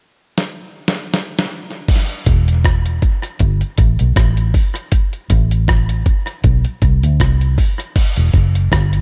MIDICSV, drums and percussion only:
0, 0, Header, 1, 2, 480
1, 0, Start_track
1, 0, Tempo, 759494
1, 1191, Time_signature, 4, 2, 24, 8
1, 5696, End_track
2, 0, Start_track
2, 0, Title_t, "Drums"
2, 238, Note_on_c, 9, 38, 56
2, 301, Note_off_c, 9, 38, 0
2, 556, Note_on_c, 9, 38, 67
2, 619, Note_off_c, 9, 38, 0
2, 718, Note_on_c, 9, 38, 72
2, 781, Note_off_c, 9, 38, 0
2, 876, Note_on_c, 9, 38, 92
2, 939, Note_off_c, 9, 38, 0
2, 1190, Note_on_c, 9, 49, 81
2, 1191, Note_on_c, 9, 36, 106
2, 1254, Note_off_c, 9, 36, 0
2, 1254, Note_off_c, 9, 49, 0
2, 1324, Note_on_c, 9, 42, 50
2, 1387, Note_off_c, 9, 42, 0
2, 1431, Note_on_c, 9, 42, 62
2, 1432, Note_on_c, 9, 36, 86
2, 1494, Note_off_c, 9, 42, 0
2, 1495, Note_off_c, 9, 36, 0
2, 1568, Note_on_c, 9, 42, 46
2, 1631, Note_off_c, 9, 42, 0
2, 1672, Note_on_c, 9, 36, 95
2, 1676, Note_on_c, 9, 42, 81
2, 1678, Note_on_c, 9, 37, 100
2, 1735, Note_off_c, 9, 36, 0
2, 1739, Note_off_c, 9, 42, 0
2, 1741, Note_off_c, 9, 37, 0
2, 1805, Note_on_c, 9, 42, 44
2, 1868, Note_off_c, 9, 42, 0
2, 1910, Note_on_c, 9, 42, 59
2, 1911, Note_on_c, 9, 36, 85
2, 1973, Note_off_c, 9, 42, 0
2, 1974, Note_off_c, 9, 36, 0
2, 2044, Note_on_c, 9, 42, 47
2, 2107, Note_off_c, 9, 42, 0
2, 2145, Note_on_c, 9, 42, 79
2, 2151, Note_on_c, 9, 36, 110
2, 2208, Note_off_c, 9, 42, 0
2, 2214, Note_off_c, 9, 36, 0
2, 2281, Note_on_c, 9, 42, 41
2, 2344, Note_off_c, 9, 42, 0
2, 2386, Note_on_c, 9, 42, 71
2, 2390, Note_on_c, 9, 36, 92
2, 2449, Note_off_c, 9, 42, 0
2, 2454, Note_off_c, 9, 36, 0
2, 2522, Note_on_c, 9, 42, 46
2, 2585, Note_off_c, 9, 42, 0
2, 2630, Note_on_c, 9, 36, 105
2, 2631, Note_on_c, 9, 42, 86
2, 2636, Note_on_c, 9, 37, 99
2, 2694, Note_off_c, 9, 36, 0
2, 2694, Note_off_c, 9, 42, 0
2, 2699, Note_off_c, 9, 37, 0
2, 2762, Note_on_c, 9, 42, 55
2, 2826, Note_off_c, 9, 42, 0
2, 2870, Note_on_c, 9, 36, 95
2, 2870, Note_on_c, 9, 46, 80
2, 2933, Note_off_c, 9, 46, 0
2, 2934, Note_off_c, 9, 36, 0
2, 3005, Note_on_c, 9, 42, 57
2, 3068, Note_off_c, 9, 42, 0
2, 3107, Note_on_c, 9, 42, 105
2, 3110, Note_on_c, 9, 36, 111
2, 3170, Note_off_c, 9, 42, 0
2, 3173, Note_off_c, 9, 36, 0
2, 3242, Note_on_c, 9, 42, 51
2, 3305, Note_off_c, 9, 42, 0
2, 3348, Note_on_c, 9, 42, 64
2, 3350, Note_on_c, 9, 36, 88
2, 3411, Note_off_c, 9, 42, 0
2, 3413, Note_off_c, 9, 36, 0
2, 3484, Note_on_c, 9, 42, 47
2, 3547, Note_off_c, 9, 42, 0
2, 3590, Note_on_c, 9, 36, 104
2, 3594, Note_on_c, 9, 42, 82
2, 3596, Note_on_c, 9, 37, 97
2, 3654, Note_off_c, 9, 36, 0
2, 3658, Note_off_c, 9, 42, 0
2, 3660, Note_off_c, 9, 37, 0
2, 3723, Note_on_c, 9, 42, 46
2, 3786, Note_off_c, 9, 42, 0
2, 3829, Note_on_c, 9, 42, 59
2, 3830, Note_on_c, 9, 36, 84
2, 3892, Note_off_c, 9, 42, 0
2, 3894, Note_off_c, 9, 36, 0
2, 3962, Note_on_c, 9, 42, 46
2, 4025, Note_off_c, 9, 42, 0
2, 4068, Note_on_c, 9, 42, 76
2, 4071, Note_on_c, 9, 36, 106
2, 4131, Note_off_c, 9, 42, 0
2, 4134, Note_off_c, 9, 36, 0
2, 4200, Note_on_c, 9, 42, 39
2, 4263, Note_off_c, 9, 42, 0
2, 4308, Note_on_c, 9, 42, 70
2, 4310, Note_on_c, 9, 36, 93
2, 4372, Note_off_c, 9, 42, 0
2, 4373, Note_off_c, 9, 36, 0
2, 4446, Note_on_c, 9, 42, 49
2, 4509, Note_off_c, 9, 42, 0
2, 4550, Note_on_c, 9, 36, 102
2, 4554, Note_on_c, 9, 42, 80
2, 4558, Note_on_c, 9, 37, 95
2, 4613, Note_off_c, 9, 36, 0
2, 4617, Note_off_c, 9, 42, 0
2, 4621, Note_off_c, 9, 37, 0
2, 4685, Note_on_c, 9, 42, 53
2, 4748, Note_off_c, 9, 42, 0
2, 4790, Note_on_c, 9, 36, 87
2, 4794, Note_on_c, 9, 46, 79
2, 4854, Note_off_c, 9, 36, 0
2, 4857, Note_off_c, 9, 46, 0
2, 4928, Note_on_c, 9, 42, 54
2, 4991, Note_off_c, 9, 42, 0
2, 5028, Note_on_c, 9, 49, 83
2, 5029, Note_on_c, 9, 36, 108
2, 5029, Note_on_c, 9, 42, 105
2, 5092, Note_off_c, 9, 42, 0
2, 5092, Note_off_c, 9, 49, 0
2, 5093, Note_off_c, 9, 36, 0
2, 5160, Note_on_c, 9, 42, 55
2, 5223, Note_off_c, 9, 42, 0
2, 5267, Note_on_c, 9, 42, 62
2, 5269, Note_on_c, 9, 36, 84
2, 5331, Note_off_c, 9, 42, 0
2, 5332, Note_off_c, 9, 36, 0
2, 5406, Note_on_c, 9, 42, 47
2, 5469, Note_off_c, 9, 42, 0
2, 5509, Note_on_c, 9, 36, 104
2, 5514, Note_on_c, 9, 42, 81
2, 5516, Note_on_c, 9, 37, 102
2, 5572, Note_off_c, 9, 36, 0
2, 5577, Note_off_c, 9, 42, 0
2, 5579, Note_off_c, 9, 37, 0
2, 5643, Note_on_c, 9, 42, 44
2, 5696, Note_off_c, 9, 42, 0
2, 5696, End_track
0, 0, End_of_file